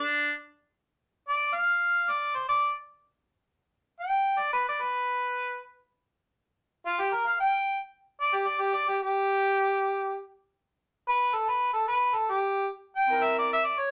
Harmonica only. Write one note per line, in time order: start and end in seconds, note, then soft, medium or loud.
0.00 0.32 D4 medium
1.28 1.56 D5 medium
1.54 2.11 F5 medium
2.10 2.37 D5 medium
2.35 2.48 C5 medium
2.49 2.74 D5 medium
4.00 4.41 G5 medium
4.39 4.52 D5 medium
4.53 4.66 B4 medium
4.68 4.83 D5 medium
4.81 5.60 B4 medium
6.86 7.01 F4 loud
7.00 7.15 G4 medium
7.13 7.28 A#4 medium
7.26 7.38 F5 medium
7.40 7.78 G5 medium
8.21 8.37 D5 medium
8.35 8.49 G4 medium
8.47 8.63 D5 medium
8.61 8.76 G4 medium
8.75 8.91 D5 medium
8.90 9.02 G4 medium
9.03 10.20 G4 medium
11.08 11.36 B4 loud
11.34 11.50 A4 medium
11.49 11.72 B4 medium
11.73 11.87 A4 medium
11.88 12.16 B4 medium
12.14 12.32 A4 medium
12.30 12.68 G4 medium
12.96 13.25 G5 medium
13.24 13.36 E5 medium
13.39 13.51 D5 medium
13.53 13.66 E5 loud
13.65 13.80 D5 medium
13.79 13.91 C#5 medium